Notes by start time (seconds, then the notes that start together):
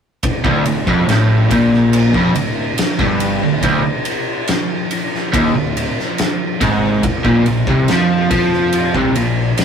0.23 kick, ride
0.44 D1 D2, kick
0.66 D1 D2, ride
0.87 F1 F2, kick
1.07 A1 A2, snare, ride
1.49 A#1 A#2, kick, ride
1.74 snare
1.93 ride
2.13 F1 F2, kick
2.34 D1 D2, ride
2.78 snare, ride
2.98 G1 G2, kick
3.20 ride
3.42 D1 D2
3.62 D1 D2, kick, ride
4.05 ride
4.47 snare, ride
4.91 ride
5.14 snare
5.33 D#1 D#2, kick, ride
5.55 D1 D2
5.77 ride
5.99 snare
6.18 snare, ride
6.61 G#1 G#2, kick, ride
7.03 kick, ride
7.24 A#1 A#2, kick
7.46 A#1 A#2, ride
7.67 C2 C3, kick
7.88 F2 F3, snare, ride
8.31 F2 F3, kick, ride
8.53 snare
8.72 ride
8.95 C2 C3, kick
9.15 A#1 A#2, ride
9.57 snare, ride